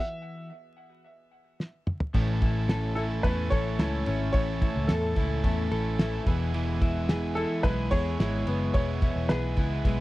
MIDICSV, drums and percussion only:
0, 0, Header, 1, 2, 480
1, 0, Start_track
1, 0, Tempo, 549954
1, 1871, Time_signature, 4, 2, 24, 8
1, 8731, End_track
2, 0, Start_track
2, 0, Title_t, "Drums"
2, 1396, Note_on_c, 9, 38, 56
2, 1483, Note_off_c, 9, 38, 0
2, 1632, Note_on_c, 9, 45, 90
2, 1719, Note_off_c, 9, 45, 0
2, 1749, Note_on_c, 9, 43, 96
2, 1836, Note_off_c, 9, 43, 0
2, 1870, Note_on_c, 9, 49, 91
2, 1872, Note_on_c, 9, 36, 99
2, 1957, Note_off_c, 9, 49, 0
2, 1960, Note_off_c, 9, 36, 0
2, 2110, Note_on_c, 9, 51, 62
2, 2112, Note_on_c, 9, 36, 97
2, 2198, Note_off_c, 9, 51, 0
2, 2199, Note_off_c, 9, 36, 0
2, 2349, Note_on_c, 9, 38, 118
2, 2350, Note_on_c, 9, 51, 81
2, 2436, Note_off_c, 9, 38, 0
2, 2438, Note_off_c, 9, 51, 0
2, 2586, Note_on_c, 9, 51, 58
2, 2673, Note_off_c, 9, 51, 0
2, 2828, Note_on_c, 9, 36, 93
2, 2830, Note_on_c, 9, 51, 69
2, 2916, Note_off_c, 9, 36, 0
2, 2917, Note_off_c, 9, 51, 0
2, 3065, Note_on_c, 9, 38, 35
2, 3069, Note_on_c, 9, 36, 94
2, 3071, Note_on_c, 9, 51, 59
2, 3152, Note_off_c, 9, 38, 0
2, 3157, Note_off_c, 9, 36, 0
2, 3158, Note_off_c, 9, 51, 0
2, 3310, Note_on_c, 9, 38, 110
2, 3311, Note_on_c, 9, 51, 83
2, 3397, Note_off_c, 9, 38, 0
2, 3398, Note_off_c, 9, 51, 0
2, 3545, Note_on_c, 9, 51, 66
2, 3632, Note_off_c, 9, 51, 0
2, 3785, Note_on_c, 9, 51, 64
2, 3789, Note_on_c, 9, 36, 114
2, 3873, Note_off_c, 9, 51, 0
2, 3876, Note_off_c, 9, 36, 0
2, 4029, Note_on_c, 9, 36, 104
2, 4030, Note_on_c, 9, 51, 62
2, 4116, Note_off_c, 9, 36, 0
2, 4117, Note_off_c, 9, 51, 0
2, 4265, Note_on_c, 9, 38, 109
2, 4266, Note_on_c, 9, 51, 86
2, 4352, Note_off_c, 9, 38, 0
2, 4353, Note_off_c, 9, 51, 0
2, 4504, Note_on_c, 9, 51, 57
2, 4509, Note_on_c, 9, 36, 90
2, 4592, Note_off_c, 9, 51, 0
2, 4596, Note_off_c, 9, 36, 0
2, 4746, Note_on_c, 9, 36, 97
2, 4747, Note_on_c, 9, 51, 68
2, 4833, Note_off_c, 9, 36, 0
2, 4835, Note_off_c, 9, 51, 0
2, 4989, Note_on_c, 9, 51, 58
2, 5076, Note_off_c, 9, 51, 0
2, 5231, Note_on_c, 9, 38, 109
2, 5231, Note_on_c, 9, 51, 79
2, 5318, Note_off_c, 9, 38, 0
2, 5319, Note_off_c, 9, 51, 0
2, 5468, Note_on_c, 9, 36, 102
2, 5468, Note_on_c, 9, 51, 64
2, 5555, Note_off_c, 9, 51, 0
2, 5556, Note_off_c, 9, 36, 0
2, 5709, Note_on_c, 9, 51, 65
2, 5796, Note_off_c, 9, 51, 0
2, 5948, Note_on_c, 9, 36, 98
2, 5948, Note_on_c, 9, 51, 60
2, 6035, Note_off_c, 9, 36, 0
2, 6035, Note_off_c, 9, 51, 0
2, 6188, Note_on_c, 9, 38, 109
2, 6190, Note_on_c, 9, 51, 84
2, 6276, Note_off_c, 9, 38, 0
2, 6277, Note_off_c, 9, 51, 0
2, 6429, Note_on_c, 9, 51, 62
2, 6516, Note_off_c, 9, 51, 0
2, 6669, Note_on_c, 9, 36, 103
2, 6672, Note_on_c, 9, 51, 71
2, 6756, Note_off_c, 9, 36, 0
2, 6760, Note_off_c, 9, 51, 0
2, 6910, Note_on_c, 9, 38, 35
2, 6911, Note_on_c, 9, 36, 93
2, 6915, Note_on_c, 9, 51, 61
2, 6997, Note_off_c, 9, 38, 0
2, 6999, Note_off_c, 9, 36, 0
2, 7003, Note_off_c, 9, 51, 0
2, 7156, Note_on_c, 9, 38, 111
2, 7157, Note_on_c, 9, 51, 73
2, 7244, Note_off_c, 9, 38, 0
2, 7244, Note_off_c, 9, 51, 0
2, 7391, Note_on_c, 9, 51, 62
2, 7478, Note_off_c, 9, 51, 0
2, 7629, Note_on_c, 9, 51, 66
2, 7634, Note_on_c, 9, 36, 111
2, 7716, Note_off_c, 9, 51, 0
2, 7721, Note_off_c, 9, 36, 0
2, 7872, Note_on_c, 9, 51, 64
2, 7874, Note_on_c, 9, 36, 108
2, 7959, Note_off_c, 9, 51, 0
2, 7962, Note_off_c, 9, 36, 0
2, 8111, Note_on_c, 9, 38, 110
2, 8112, Note_on_c, 9, 51, 83
2, 8198, Note_off_c, 9, 38, 0
2, 8199, Note_off_c, 9, 51, 0
2, 8349, Note_on_c, 9, 51, 59
2, 8356, Note_on_c, 9, 36, 88
2, 8437, Note_off_c, 9, 51, 0
2, 8444, Note_off_c, 9, 36, 0
2, 8596, Note_on_c, 9, 36, 103
2, 8596, Note_on_c, 9, 51, 73
2, 8683, Note_off_c, 9, 36, 0
2, 8683, Note_off_c, 9, 51, 0
2, 8731, End_track
0, 0, End_of_file